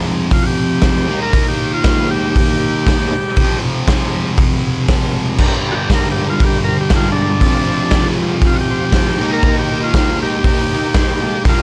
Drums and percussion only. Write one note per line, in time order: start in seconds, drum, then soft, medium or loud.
0.31 kick loud
0.31 open hi-hat medium
0.81 kick loud
0.81 snare loud
0.81 open hi-hat medium
1.33 kick loud
1.33 open hi-hat medium
1.84 kick loud
1.84 snare loud
1.84 open hi-hat medium
2.36 kick loud
2.36 open hi-hat medium
2.87 kick loud
2.87 snare loud
2.87 open hi-hat medium
3.36 kick loud
3.36 open hi-hat medium
3.88 kick loud
3.88 snare loud
3.88 open hi-hat medium
4.37 kick loud
4.37 open hi-hat medium
4.88 kick loud
4.88 snare loud
4.88 open hi-hat medium
5.38 kick loud
5.38 crash loud
5.90 kick loud
5.90 snare loud
5.90 open hi-hat medium
6.40 kick loud
6.40 open hi-hat medium
6.90 kick loud
6.90 snare loud
6.90 open hi-hat medium
7.41 kick loud
7.41 open hi-hat medium
7.91 kick loud
7.91 snare loud
7.91 open hi-hat medium
8.42 kick loud
8.42 open hi-hat medium
8.92 kick loud
8.92 snare loud
8.92 open hi-hat medium
9.42 kick loud
9.42 open hi-hat medium
9.94 kick loud
9.94 snare loud
9.94 open hi-hat medium
10.44 kick loud
10.44 open hi-hat medium
10.94 kick loud
10.94 snare loud
10.94 open hi-hat medium
11.45 kick loud
11.45 open hi-hat medium